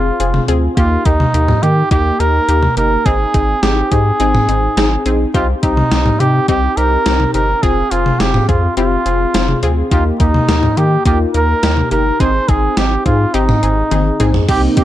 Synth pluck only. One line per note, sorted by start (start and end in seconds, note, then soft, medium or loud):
0.00 0.14 C4 medium
0.00 0.14 F4 medium
0.00 0.14 G#4 medium
0.20 0.42 C4 medium
0.20 0.42 F4 medium
0.20 0.42 G#4 medium
0.48 0.71 C4 medium
0.48 0.71 F4 medium
0.48 0.71 G#4 loud
0.77 0.99 A#3 medium
0.77 0.99 D#4 medium
0.77 0.99 G4 loud
1.06 1.28 A#3 medium
1.06 1.28 D#4 medium
1.06 1.28 G4 medium
1.34 1.57 A#3 medium
1.34 1.57 D#4 medium
1.34 1.57 G4 medium
1.63 1.85 A#3 medium
1.63 1.85 D#4 medium
1.63 1.85 G4 medium
1.91 2.14 A#3 medium
1.91 2.14 D#4 medium
1.91 2.14 G4 loud
2.20 2.42 A#3 medium
2.20 2.42 D#4 medium
2.20 2.42 G4 medium
2.49 2.71 A#3 medium
2.49 2.71 D#4 medium
2.49 2.71 G4 medium
2.77 3.00 A#3 medium
2.77 3.00 D#4 medium
2.77 3.00 G4 medium
3.06 3.28 C4 medium
3.06 3.28 D#4 medium
3.06 3.28 G#4 loud
3.34 3.57 C4 medium
3.34 3.57 D#4 medium
3.34 3.57 G#4 medium
3.63 3.85 C4 medium
3.63 3.85 D#4 medium
3.63 3.85 G#4 medium
3.92 4.14 C4 medium
3.92 4.14 D#4 medium
3.92 4.14 G4 medium
4.20 4.42 C4 loud
4.20 4.42 D#4 medium
4.20 4.42 G#4 loud
4.49 4.71 C4 medium
4.49 4.71 D#4 medium
4.49 4.71 G#4 medium
4.77 4.99 C4 medium
4.77 5.00 D#4 medium
4.77 5.00 G#4 loud
5.06 5.28 C4 medium
5.06 5.28 D#4 medium
5.06 5.28 G#4 loud
5.34 5.57 C4 medium
5.34 5.57 D#4 medium
5.34 5.57 G4 loud
5.63 5.85 C4 medium
5.63 5.85 D#4 medium
5.63 5.85 G4 medium
5.92 6.14 C4 medium
5.92 6.14 D#4 medium
5.92 6.14 G4 medium
6.20 6.42 C4 medium
6.20 6.42 D#4 medium
6.20 6.42 G4 medium
6.49 6.71 C4 medium
6.49 6.71 D#4 medium
6.49 6.71 G4 loud
6.77 7.00 C4 medium
6.77 7.00 D#4 medium
6.77 7.00 G4 medium
7.06 7.28 C4 medium
7.06 7.28 D#4 medium
7.06 7.28 G4 medium
7.34 7.57 C4 medium
7.34 7.57 D#4 medium
7.34 7.57 G4 medium
7.63 7.85 C4 medium
7.63 7.85 F4 medium
7.63 7.85 G#4 loud
7.92 8.14 C4 medium
7.92 8.14 F4 medium
7.92 8.14 G#4 medium
8.20 8.42 C4 medium
8.20 8.42 F4 medium
8.20 8.42 G#4 medium
8.49 8.71 C4 medium
8.49 8.71 F4 medium
8.49 8.71 G#4 medium
8.77 9.00 C4 loud
8.77 9.00 F4 medium
8.77 9.00 G4 loud
9.06 9.28 C4 medium
9.06 9.28 F4 medium
9.06 9.28 G#4 medium
9.34 9.57 C4 medium
9.34 9.57 F4 medium
9.34 9.57 G#4 medium
9.63 9.85 C4 medium
9.63 9.85 F4 medium
9.63 9.85 G#4 loud
9.92 10.14 A#3 loud
9.92 10.14 D#4 medium
9.92 10.14 G4 loud
10.20 10.42 A#3 medium
10.20 10.42 D#4 medium
10.20 10.42 G4 medium
10.49 10.71 A#3 medium
10.49 10.71 D#4 medium
10.49 10.71 G4 medium
10.77 11.00 A#3 medium
10.77 11.00 D#4 medium
10.77 11.00 G4 medium
11.06 11.28 A#3 medium
11.06 11.28 D#4 medium
11.06 11.28 F4 loud
11.34 11.57 A#3 medium
11.34 11.57 D#4 medium
11.34 11.57 A#4 medium
11.63 11.85 A#3 medium
11.63 11.85 D#4 medium
11.63 11.85 G4 medium
11.92 12.14 A#3 medium
11.92 12.14 D#4 medium
11.92 12.14 G4 medium
12.20 12.42 C4 medium
12.20 12.42 D#4 medium
12.20 12.42 G#4 loud
12.49 12.71 C4 medium
12.49 12.71 D#4 medium
12.49 12.71 G#4 medium
12.77 13.00 C4 medium
12.77 13.00 D#4 medium
12.77 13.00 G4 medium
13.06 13.28 C4 medium
13.06 13.28 D#4 medium
13.06 13.28 G#4 medium
13.34 13.57 C4 loud
13.34 13.57 D#4 medium
13.34 13.57 G4 loud
13.63 13.85 C4 medium
13.63 13.85 D#4 medium
13.63 13.85 G#4 medium
13.91 14.14 C4 medium
13.91 14.14 D#4 medium
13.91 14.14 G#4 medium
14.20 14.42 C4 medium
14.20 14.42 D#4 medium
14.20 14.42 G#4 medium
14.49 14.71 C4 loud
14.49 14.71 D#4 medium
14.49 14.71 G4 loud
14.77 14.84 C4 medium
14.77 14.84 D#4 medium
14.77 14.84 G4 medium